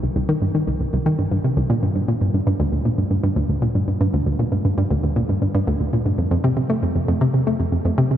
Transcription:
X:1
M:4/4
L:1/16
Q:1/4=117
K:Gm
V:1 name="Synth arpeggio sound" clef=bass
C,, C,, E, G,, E, C,, C,, C,, E, G,, G,, C, C,, B,, G,, G,, | B,, G,, G,, G,, D,, D,, B,, G,, G,, G,, D,, D,, B,, G,, G,, G,, | D,, D,, B,, G,, G,, G,, D,, D,, B,, G,, G,, G,, D,, D,, B,, G,, | F,, F,, C, C, A, F,, F,, F,, C, C, A, F,, F,, F,, C, C, |]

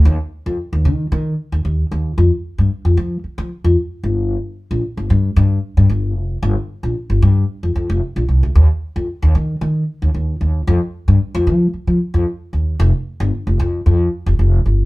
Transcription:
X:1
M:4/4
L:1/16
Q:1/4=113
K:Gm
V:1 name="Upright bass" clef=bass
E,, z2 F,, z E,, E,2 E,2 z E,, E,,2 E,,2 | F,, z2 G,, z F,, F,2 z F, z F,, z2 G,,,2- | G,,, z2 B,,, z G,,, G,,2 G,,2 z G,, G,,,2 F,,,2 | G,,, z2 B,,, z G,,, G,,2 z F,, F,, F,,, z B,,, C,, D,, |
E,, z2 F,, z E,, E,2 E,2 z E,, E,,2 E,,2 | F,, z2 G,, z F,, F,2 z F, z F,, z2 E,,2 | F,,, z2 G,,, z F,,, F,,2 F,,2 z F,,, F,,,2 G,,,2 |]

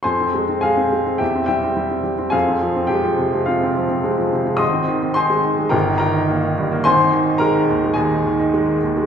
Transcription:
X:1
M:4/4
L:1/16
Q:1/4=106
K:Fm
V:1 name="Grand piano"
[cac']4 [Afa]4 [G=eg]2 [Geg]6 | [Afa]4 [Gg]4 [Fcf]6 z2 | [ec'e']4 [cac']4 [Bgb]2 [Bgb]6 | [cac']4 [Bb]4 [Aea]6 z2 |]
V:2 name="Grand piano" clef=bass
F,, C A, C A, C A, C =E,, C G, C G, C G, C | F,, C F, C A, F, C, A, C, C F, C A, F, C, A, | A,,, C E, C E A, E, A, G,,, E E, E B, E, G,, B, | A,,, E E, E A, E, E,, A, E,, E E, E A, E, E,, A, |]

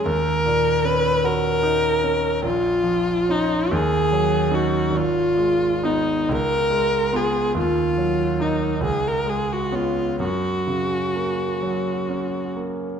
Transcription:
X:1
M:6/8
L:1/16
Q:3/8=47
K:D#m
V:1 name="Viola"
A4 B2 A6 | E4 D2 G4 F2 | E4 D2 A4 G2 | E4 D2 G A G F E2 |
F8- F2 z2 |]
V:2 name="Grand piano"
D,,2 A,,2 C2 F2 D2 C2 | A,,,2 E,2 [CE]2 D,,2 F,2 [CD]2 | G,,,2 G,2 [B,D]2 C,,2 G,2 [B,E]2 | D,,2 F,2 [A,D]2 C,,2 G,2 [B,C]2 |
F,,2 C,2 A,2 F,2 C2 A,2 |]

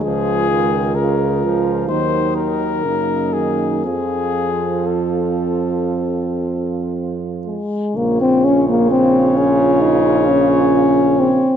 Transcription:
X:1
M:4/4
L:1/16
Q:1/4=64
K:Bbm
V:1 name="Flugelhorn"
A4 B4 c2 B4 A2 | A4 =A8 z4 | d16 |]
V:2 name="French horn section"
F4 F4 E4 E4 | F12- F2 z2 | F16 |]
V:3 name="Euphonium"
A,8 G,4 B,4 | C12- C2 A,2 | B, C D B, C2 D2 E2 D4 C2 |]
V:4 name="Trombone" clef=bass
F,2 E,2 D,2 F,2 E,4 D,2 E,2 | F,12- F,2 z2 | D,16 |]
V:5 name="Tuba" clef=bass
D,,8 E,,4 G,,4 | F,,12- F,,2 z2 | B,,,16 |]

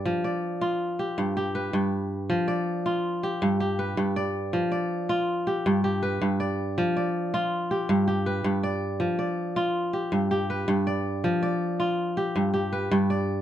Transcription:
X:1
M:12/8
L:1/8
Q:3/8=107
K:Ddor
V:1 name="Kora"
d d3 z G2 G B3 z | z d3 z G2 G B2 d2- | d d3 z G2 G B2 d2- | d d3 z G2 G B2 d2- |
d d3 z G2 G B2 d2- | d d3 z G2 G B2 d2 |]
V:2 name="Kora" clef=bass
F,2 z F2 z G,,2 z G,,2 z | F,2 z F2 z G,,2 z G,,2 z | F,2 z F2 z G,,2 z G,,2 z | F,2 z F2 z G,,2 z G,,2 z |
F,2 z F2 z G,,2 z G,,2 z | F,2 z F2 z G,,2 z G,,2 z |]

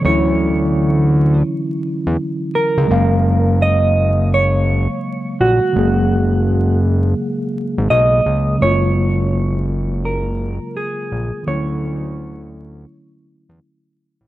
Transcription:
X:1
M:4/4
L:1/16
Q:"Swing 16ths" 1/4=84
K:F#
V:1 name="Clean electric guitar"
c8 z6 A2- | A4 d4 c6 F2- | F6 z6 d4 | c8 A4 G4 |
c6 z8 z2 |]
V:2 name="Tine electric piano" clef=bass
[=D,=E,F,C=E]16 | [C,F,G,A,e]16 | [C,F,G,A,G]16 | [C,F,G,A,E]16 |
[=D,E,F,=A,C=E]16 |]
V:3 name="Analog synth bass" clef=bass
=D,,8 z3 =E,, z3 C,, | F,,,8- F,,,3 z3 A,,, z | F,,,8 z3 G,,, B,,,2 C,,2 | F,,,8- F,,,3 z3 A,,, z |
=D,,8 z3 =E,, z3 =A,,, |]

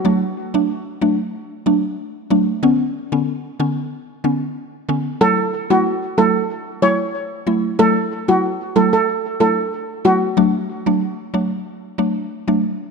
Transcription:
X:1
M:4/4
L:1/16
Q:1/4=93
K:F#m
V:1 name="Steel pan"
z16 | z16 | A2 z F z2 A z3 c z4 z | A2 z F z2 A A z2 A z3 F z |
z16 |]
V:2 name="Synth pluck"
[F,A,D] z2 [F,A,D] z2 [F,A,D] z3 [F,A,D] z3 [F,A,D] z | [D,B,C] z2 [D,B,C] z2 [D,B,C] z3 [D,B,C] z3 [D,B,C] z | [F,A,E] z2 [F,A,E] z2 [F,A,E] z3 [F,A,E] z3 [F,A,E] z | [F,A,E] z2 [F,A,E] z2 [F,A,E] z3 [F,A,E] z3 [F,A,E] z |
[F,A,D] z2 [F,A,D] z2 [F,A,D] z3 [F,A,D] z2 [F,A,D] z2 |]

